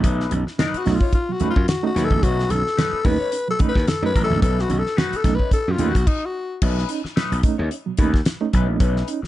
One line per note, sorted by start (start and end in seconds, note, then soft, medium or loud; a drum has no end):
0.00 0.25 B1 loud
0.00 0.16 B2 medium
0.00 0.16 F#3 medium
0.00 0.20 A3 medium
0.00 0.29 A3 medium
0.00 0.29 C#4 medium
0.00 kick loud
0.00 closed hi-hat medium
0.05 0.30 D#4 medium
0.05 0.30 B4 loud
0.05 muted conga soft
0.20 snare soft
0.31 0.43 B1 loud
0.31 0.43 C#4 medium
0.31 0.44 D#4 medium
0.31 closed hi-hat medium
0.31 muted conga medium
0.47 muted clean electric guitar stroke soft
0.47 snare soft
0.58 0.71 B2 medium
0.58 0.71 F#3 medium
0.58 0.80 A3 medium
0.58 0.80 C#4 medium
0.58 0.79 D#4 medium
0.58 0.80 D#4 medium
0.58 0.81 B4 medium
0.58 snare loud
0.58 closed hi-hat medium
0.58 high conga medium
0.74 0.97 F#4 medium
0.74 muted slap bass stroke soft
0.74 closed hi-hat soft
0.85 0.98 B1 medium
0.85 0.98 A3 medium
0.85 0.98 C#4 medium
0.85 0.98 D#4 medium
0.85 muted clean electric guitar stroke soft
0.85 snare soft
0.85 open hi-hat medium
0.85 low conga medium
0.95 1.13 F4 medium
1.01 1.12 A3 soft
1.01 1.13 C#4 medium
1.01 1.13 D#4 medium
1.01 1.14 C#5 medium
1.01 kick medium
1.13 1.20 C#4 soft
1.13 1.20 D#4 medium
1.13 1.34 F4 medium
1.13 muted clean electric guitar stroke soft
1.13 kick medium
1.13 closed hi-hat medium
1.29 1.38 B2 medium
1.29 1.38 F#3 medium
1.29 1.49 F#4 medium
1.40 1.57 A3 medium
1.40 1.53 A3 medium
1.40 1.53 C#4 medium
1.40 1.56 C#4 medium
1.40 1.53 D#4 medium
1.40 1.56 D#4 medium
1.40 1.55 B4 medium
1.40 muted slap bass stroke soft
1.40 closed hi-hat medium
1.40 muted conga medium
1.40 low conga medium
1.50 1.67 F4 medium
1.56 1.65 F#2 medium
1.56 muted clean electric guitar stroke soft
1.56 kick medium
1.68 1.85 F#4 medium
1.68 muted clean electric guitar stroke soft
1.68 snare loud
1.68 closed hi-hat medium
1.68 high conga medium
1.83 1.93 A3 medium
1.83 1.93 C#4 medium
1.83 1.93 D#4 loud
1.83 2.06 F#4 loud
1.83 muted clean electric guitar stroke medium
1.95 2.08 D#2 medium
1.95 2.08 B2 medium
1.95 2.08 F#3 medium
1.95 2.15 A3 medium
1.95 2.11 C#4 loud
1.95 2.10 D#4 medium
1.95 2.09 B4 loud
1.95 snare soft
1.95 closed hi-hat medium
2.04 2.24 A4 loud
2.11 2.20 A#1 medium
2.11 2.20 A3 medium
2.11 2.20 C#4 medium
2.11 2.21 D#4 medium
2.11 muted clean electric guitar stroke soft
2.11 kick medium
2.11 high conga medium
2.23 2.44 B1 loud
2.23 2.35 B2 medium
2.23 2.35 F#3 medium
2.23 2.48 A3 medium
2.23 2.48 C#4 loud
2.23 2.49 D#4 medium
2.23 2.52 F#4 loud
2.23 2.49 B4 loud
2.23 kick loud
2.23 closed hi-hat medium
2.39 snare soft
2.50 2.62 B1 loud
2.50 2.62 C#4 medium
2.50 2.63 D#4 medium
2.50 3.07 A4 loud
2.50 closed hi-hat medium
2.50 muted conga medium
2.65 muted clean electric guitar stroke soft
2.65 snare soft
2.77 2.90 B2 medium
2.77 2.90 F#3 medium
2.77 2.98 A3 medium
2.77 2.98 C#4 medium
2.77 2.98 D#4 medium
2.77 2.98 B4 medium
2.77 snare loud
2.77 closed hi-hat medium
2.77 high conga medium
2.93 muted slap bass stroke soft
3.04 3.17 D#2 medium
3.04 3.17 A3 medium
3.04 3.17 C#4 medium
3.04 3.17 D#4 medium
3.04 3.50 B4 loud
3.04 muted clean electric guitar stroke medium
3.04 kick loud
3.04 open hi-hat medium
3.04 low conga medium
3.19 3.30 A3 medium
3.19 3.31 C#4 medium
3.19 3.31 D#4 medium
3.19 3.32 C#5 medium
3.31 3.39 C#4 soft
3.31 3.39 D#4 medium
3.31 muted clean electric guitar stroke medium
3.31 closed hi-hat medium
3.48 3.58 B2 medium
3.48 3.58 F#3 medium
3.48 3.59 A4 loud
3.59 3.76 A3 medium
3.59 3.72 A3 medium
3.59 3.75 C#4 medium
3.59 3.72 C#4 medium
3.59 3.74 D#4 medium
3.59 3.72 D#4 medium
3.59 3.74 B4 medium
3.59 muted slap bass stroke soft
3.59 kick medium
3.59 closed hi-hat medium
3.59 muted conga medium
3.69 3.89 B4 loud
3.75 3.85 D#2 medium
3.75 muted clean electric guitar stroke medium
3.75 kick medium
3.75 snare soft
3.86 4.05 A4 loud
3.86 muted clean electric guitar stroke soft
3.86 snare loud
3.86 closed hi-hat medium
3.86 high conga medium
4.02 4.12 F#2 medium
4.02 4.12 A3 medium
4.02 4.12 C#4 medium
4.02 4.13 D#4 medium
4.02 4.23 B4 loud
4.02 muted clean electric guitar stroke medium
4.14 4.27 A1 medium
4.14 4.27 B2 medium
4.14 4.27 F#3 medium
4.14 4.35 A3 loud
4.14 4.30 C#4 loud
4.14 4.29 D#4 loud
4.14 4.29 B4 loud
4.14 kick medium
4.14 closed hi-hat medium
4.24 4.41 A4 loud
4.30 4.40 A#1 medium
4.30 4.40 A3 medium
4.30 4.40 C#4 medium
4.30 4.40 D#4 medium
4.30 muted clean electric guitar stroke soft
4.30 high conga medium
4.42 4.64 B1 loud
4.42 4.55 F#3 medium
4.42 4.67 A3 medium
4.42 4.68 C#4 medium
4.42 4.68 D#4 medium
4.42 4.62 A4 loud
4.42 4.68 B4 loud
4.42 kick loud
4.42 closed hi-hat medium
4.42 muted conga soft
4.59 4.80 F#4 medium
4.59 snare soft
4.69 4.82 B1 loud
4.69 4.82 C#4 medium
4.69 4.82 D#4 medium
4.69 closed hi-hat medium
4.69 muted conga medium
4.79 4.99 A4 loud
4.85 muted clean electric guitar stroke medium
4.85 snare soft
4.96 5.09 B2 medium
4.96 5.09 F#3 medium
4.96 5.17 A3 medium
4.96 5.17 C#4 medium
4.96 5.18 D#4 medium
4.96 5.18 F#4 medium
4.96 5.18 B4 medium
4.96 snare loud
4.96 closed hi-hat medium
4.96 high conga medium
5.13 5.36 A4 loud
5.13 muted slap bass stroke medium
5.13 closed hi-hat medium
5.24 5.36 B1 loud
5.24 5.37 A3 medium
5.24 5.37 C#4 medium
5.24 5.37 D#4 loud
5.24 muted clean electric guitar stroke medium
5.24 kick loud
5.24 snare soft
5.24 closed hi-hat medium
5.24 low conga loud
5.35 5.52 B4 medium
5.39 5.51 A3 medium
5.39 5.52 C#4 medium
5.39 5.52 D#4 medium
5.39 5.53 C#5 medium
5.39 kick medium
5.51 5.58 C#4 soft
5.51 5.58 D#4 medium
5.51 5.73 A4 loud
5.51 muted clean electric guitar stroke soft
5.51 kick medium
5.51 closed hi-hat medium
5.68 5.77 F#2 medium
5.68 5.77 B2 medium
5.68 5.77 F#3 medium
5.68 5.91 F4 medium
5.78 5.91 D#2 medium
5.78 5.91 A3 medium
5.78 5.96 A3 medium
5.78 5.92 C#4 medium
5.78 5.95 C#4 medium
5.78 5.92 D#4 medium
5.78 5.95 D#4 medium
5.78 5.94 B4 medium
5.78 closed hi-hat medium
5.78 muted conga medium
5.78 low conga medium
5.89 6.09 F#4 medium
5.95 6.04 B1 medium
5.95 muted clean electric guitar stroke soft
5.95 kick medium
5.95 closed hi-hat medium
6.07 6.27 D#4 medium
6.07 kick loud
6.07 crash medium
6.26 6.62 F#4 medium
6.62 6.83 B1 loud
6.62 6.74 B2 medium
6.62 6.74 F#3 medium
6.62 6.87 A3 medium
6.62 6.87 C#4 loud
6.62 6.88 D#4 loud
6.62 6.88 B4 loud
6.62 kick loud
6.62 crash loud
6.78 snare soft
6.89 7.01 C#4 medium
6.89 7.02 D#4 medium
6.89 closed hi-hat medium
7.04 muted clean electric guitar stroke soft
7.04 muted slap bass stroke soft
7.04 snare soft
7.16 7.29 B2 medium
7.16 7.29 F#3 medium
7.16 7.36 A3 medium
7.16 7.37 C#4 medium
7.16 7.37 D#4 loud
7.16 7.37 B4 medium
7.16 snare loud
7.16 closed hi-hat medium
7.32 7.41 B1 medium
7.32 closed hi-hat medium
7.43 7.56 A3 medium
7.43 7.56 C#4 medium
7.43 7.56 D#4 medium
7.43 muted clean electric guitar stroke soft
7.43 kick loud
7.43 closed hi-hat medium
7.58 7.68 D#2 medium
7.58 7.70 A3 soft
7.58 7.70 C#4 medium
7.58 7.70 D#4 medium
7.58 7.72 C#5 medium
7.71 7.77 C#4 soft
7.71 7.77 D#4 medium
7.71 muted clean electric guitar stroke soft
7.71 closed hi-hat medium
7.86 7.96 B2 medium
7.86 7.96 F#3 medium
7.97 8.20 D#2 medium
7.97 8.15 A3 medium
7.97 8.11 A3 medium
7.97 8.11 C#4 medium
7.97 8.13 C#4 medium
7.97 8.11 D#4 medium
7.97 8.13 D#4 medium
7.97 8.12 B4 medium
7.97 kick loud
7.97 closed hi-hat medium
8.13 muted clean electric guitar stroke soft
8.13 kick medium
8.13 snare soft
8.25 muted clean electric guitar stroke medium
8.25 snare loud
8.25 closed hi-hat medium
8.41 8.50 A3 medium
8.41 8.51 C#4 medium
8.41 8.51 D#4 medium
8.41 muted clean electric guitar stroke soft
8.53 8.67 B1 medium
8.53 8.65 B2 medium
8.53 8.65 F#3 medium
8.53 8.73 A3 medium
8.53 8.69 C#4 loud
8.53 8.68 D#4 medium
8.53 8.67 B4 loud
8.53 kick medium
8.53 closed hi-hat medium
8.67 8.77 A#1 medium
8.67 8.78 A3 medium
8.67 8.78 C#4 medium
8.67 8.78 D#4 medium
8.67 muted clean electric guitar stroke medium
8.80 9.02 B1 loud
8.80 8.93 B2 medium
8.80 8.93 F#3 medium
8.80 9.05 A3 medium
8.80 9.06 C#4 medium
8.80 9.06 D#4 medium
8.80 9.06 B4 medium
8.80 kick loud
8.80 closed hi-hat medium
8.96 snare soft
9.08 9.20 C#4 medium
9.08 9.20 D#4 medium
9.08 closed hi-hat medium
9.22 muted clean electric guitar stroke medium
9.22 muted slap bass stroke medium
9.22 snare soft